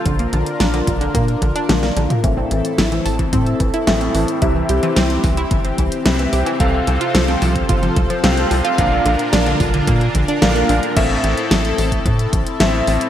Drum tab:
CC |----------------|----------------|----------------|----------------|
HH |xxxxxxxxxxxxxxxx|x-xxxxoxxxxxxxox|x-xxxxoxxxxxxxox|x-xxxxoxxxxxxxox|
SD |----o-------oo--|----o-------o---|----o-------o---|----o-------o---|
T1 |------------o---|----------------|----------------|----------------|
T2 |---------------o|----------------|----------------|----------------|
BD |o-----o-o-o-----|o------oo-o-----|o-----o-o-o-----|o------oo-o-----|

CC |----------------|x---------------|
HH |x-xxxxoxxxxxxxox|x-xxxxoxxxxxx-ox|
SD |----o-------o---|----o-------o---|
T1 |----------------|----------------|
T2 |----------------|----------------|
BD |o-----o-o-o-----|o------oo-o-----|